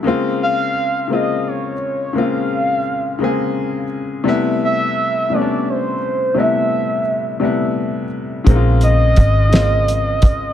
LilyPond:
<<
  \new Staff \with { instrumentName = "Soft synth lead" } { \time 6/8 \key bes \dorian \tempo 4. = 57 r8 f''4 ees''8 des''4 | f''2 r4 | r8 e''4 d''8 c''4 | e''2 r4 |
r8 ees''2~ ees''8 | }
  \new Staff \with { instrumentName = "Grand piano" } { \time 6/8 \key bes \dorian <des aes bes c' f'>4 r8 <des aes bes c' f'>4 r8 | <des aes bes c' f'>4 r8 <des aes bes c' aes'>4 r8 | <c g a b e'>4 r8 <c g a b des' d'>4 r8 | <c g a b e'>4 r8 <c g a b e'>4 r8 |
<des aes bes c' ees' f'>4 r8 <des aes bes c' f'>4 r8 | }
  \new Staff \with { instrumentName = "Fingered electric bass" } { \clef bass \time 6/8 \key bes \dorian r2. | r2. | r2. | r2. |
bes,,4 aes,,2 | }
  \new DrumStaff \with { instrumentName = "Drums" } \drummode { \time 6/8 r4. r4. | r4. r4. | r4. r4. | r4. r4. |
<hh bd>8 hh8 <hh bd>8 <hh sn>8 hh8 <hh bd>8 | }
>>